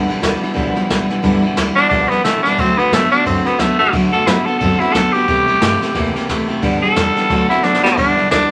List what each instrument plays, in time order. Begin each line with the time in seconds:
0.07 upright bass B1, clean electric guitar G2 D3, steel-string acoustic guitar E3 G3 B3 E4, ride
0.20 upright bass D2, clean electric guitar G2 E3, steel-string acoustic guitar E3 G3 B3 E4, snare, ride
0.40 clean electric guitar G2 E3, steel-string acoustic guitar E3 G3 B3 E4, muted upright bass stroke, ride
0.54 upright bass B1, steel-string acoustic guitar G2 D3 E3 G3 B3 E4, clean electric guitar G2 F3, kick, ride
0.74 clean electric guitar G2 F3, steel-string acoustic guitar E3 G3 B3 E4, snare, ride
0.89 upright bass B1, clean electric guitar G2 E3, steel-string acoustic guitar E3 G3 B3 E4, kick, snare, ride
1.09 upright bass B1, clean electric guitar G2 E3, steel-string acoustic guitar E3 G3 B3 E4, snare, ride
1.23 upright bass G1, steel-string acoustic guitar G2 D3 E3 G3 B3 E4, clean electric guitar G2 D3, kick, ride
1.42 upright bass B1, clean electric guitar G2 D3, steel-string acoustic guitar E3 G3 B3 E4, ride
1.56 upright bass D2, clean electric guitar G2 E3, steel-string acoustic guitar E3 G3 B3 E4, snare, ride
1.76 clean electric guitar G2 E3, steel-string acoustic guitar E3 G3 B3 E4, tenor saxophone D4, muted upright bass stroke, ride
1.89 upright bass B1, steel-string acoustic guitar G2 D3 E3 G3 B3 E4, clean electric guitar G2 F3, tenor saxophone D4, kick, ride
2.09 clean electric guitar G2 F3, steel-string acoustic guitar G3 B3 E4, tenor saxophone B3, snare, ride
2.14 steel-string acoustic guitar E3
2.24 upright bass B1, clean electric guitar G2 E3, steel-string acoustic guitar E3 G3 B3 E4, tenor saxophone A3, snare, ride
2.43 upright bass B1, clean electric guitar G2 E3, steel-string acoustic guitar G3 B3 E4, tenor saxophone D4, snare, ride
2.47 steel-string acoustic guitar E3
2.58 upright bass D2, clean electric guitar D3 A3, steel-string acoustic guitar D3 F#3 A3 B3 F#4, tenor saxophone C4, kick, ride
2.78 upright bass F#2, clean electric guitar D3 A3, tenor saxophone B3, steel-string acoustic guitar B3 F#4, ride
2.82 steel-string acoustic guitar A3
2.91 upright bass A2, clean electric guitar D3 B3, steel-string acoustic guitar F#3 A3 B3 F#4, tenor saxophone A3, snare, ride
3.11 clean electric guitar D3 B3, steel-string acoustic guitar B3 F#4, tenor saxophone D4, muted upright bass stroke, ride
3.15 steel-string acoustic guitar A3
3.25 upright bass F#2, clean electric guitar D3 C4, steel-string acoustic guitar D3 F#3 A3 B3 F#4, tenor saxophone C4, kick, ride
3.44 clean electric guitar D3 C4, tenor saxophone B3, steel-string acoustic guitar B3 F#4, muted upright bass stroke, snare, ride
3.48 steel-string acoustic guitar A3
3.58 upright bass F#2, clean electric guitar D3 B3, steel-string acoustic guitar F#3 A3 B3, tenor saxophone A3, kick, snare, ride
3.63 steel-string acoustic guitar F#4
3.78 upright bass F#2, clean electric guitar D3 B3, tenor saxophone A3, steel-string acoustic guitar B3 F#4, ride
3.83 steel-string acoustic guitar A3
3.92 upright bass D2, clean electric guitar D3 A3, steel-string acoustic guitar D3 F#3 A3 B3, kick, ride
3.96 steel-string acoustic guitar F#4
4.12 upright bass F#2, clean electric guitar D3 A3, steel-string acoustic guitar B3 F#4, tenor saxophone A4, ride
4.17 steel-string acoustic guitar A3
4.26 upright bass A2, clean electric guitar D3 B3, steel-string acoustic guitar F#3 A3 B3 F#4, tenor saxophone E4, snare, ride
4.46 clean electric guitar D3 B3, steel-string acoustic guitar B3 F#4, tenor saxophone A4, muted upright bass stroke, ride
4.50 steel-string acoustic guitar A3
4.59 upright bass F#2, clean electric guitar D3 C4, steel-string acoustic guitar D3 F#3 A3, tenor saxophone A4, kick, ride
4.63 steel-string acoustic guitar B3 F#4
4.80 clean electric guitar D3 C4, steel-string acoustic guitar A3 B3 F#4, tenor saxophone E4, muted upright bass stroke, ride
4.93 upright bass F#2, clean electric guitar D3 B3, steel-string acoustic guitar F#3 A3 B3 F#4, tenor saxophone A4, kick, snare, ride
5.12 upright bass D2, clean electric guitar D3 B3, steel-string acoustic guitar B3 F#4, tenor saxophone G4, ride
5.17 steel-string acoustic guitar A3
5.28 upright bass C2, steel-string acoustic guitar C3 E3 A3 E4 G4, clean electric guitar C3 G3, kick, ride
5.47 upright bass E2, clean electric guitar C3 G3, steel-string acoustic guitar A3 E4 G4, ride
5.61 upright bass G2, clean electric guitar C3 A3, steel-string acoustic guitar E3 A3 E4 G4, snare, ride
5.80 clean electric guitar C3 A3, steel-string acoustic guitar A3 E4 G4, snare, ride
5.93 upright bass E2, steel-string acoustic guitar C3 E3 A3 E4 G4, clean electric guitar C3 A#3, kick, snare, ride
6.13 clean electric guitar C3 A#3, steel-string acoustic guitar A3 E4 G4, muted upright bass stroke, snare, ride
6.27 upright bass E2, clean electric guitar C3 A3, steel-string acoustic guitar E3 A3 E4, kick, snare, ride
6.31 steel-string acoustic guitar G4
6.48 upright bass E2, clean electric guitar C3 A3, steel-string acoustic guitar A3 E4 G4, ride
6.62 upright bass G1, steel-string acoustic guitar G2 D3 E3 G3 B3 G4, clean electric guitar G2 D3, kick, ride
6.82 clean electric guitar G2 D3, steel-string acoustic guitar E3 G3 B3 G4, tenor saxophone A4, ride
6.96 upright bass E2, clean electric guitar G2 E3, steel-string acoustic guitar E3 G3 B3 G4, snare, ride
7.15 clean electric guitar G2 E3, steel-string acoustic guitar G3 B3 G4, muted upright bass stroke, snare, ride
7.19 steel-string acoustic guitar E3
7.29 upright bass D2, steel-string acoustic guitar D3 F#3 A3 B3 F#4, clean electric guitar D3 A3, kick, snare, ride
7.48 clean electric guitar D3 C4, steel-string acoustic guitar A3 B3 F#4, tenor saxophone E4, snare, ride
7.63 upright bass F#2, clean electric guitar D3 B3, steel-string acoustic guitar F#3 A3 B3 F#4, tenor saxophone D4, snare
7.74 snare
7.82 upright bass F#1, clean electric guitar D3 B3, tenor saxophone G3, steel-string acoustic guitar A3 B3 F#4, snare
7.96 upright bass G1, steel-string acoustic guitar G2 D3 E3 G3 B3 E4, clean electric guitar G2 D3, tenor saxophone D4, kick, ride
8.15 upright bass B1, clean electric guitar G2 D3, steel-string acoustic guitar E3 G3 B3 E4, ride
8.30 upright bass D2, clean electric guitar G2 E3, steel-string acoustic guitar E3 G3 B3 E4, tenor saxophone D4, snare, ride